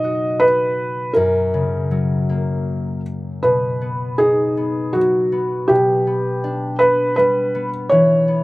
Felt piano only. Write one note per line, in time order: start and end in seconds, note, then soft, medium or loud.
0.00 0.42 D#5 loud
0.40 1.11 B4 medium
1.13 3.00 A#4 medium
3.43 4.15 B4 medium
4.18 4.96 G#4 medium
4.93 5.70 F#4 medium
5.68 6.76 G4 medium
6.79 7.14 B4 medium
7.16 7.68 B4 medium
7.89 8.44 C#5 medium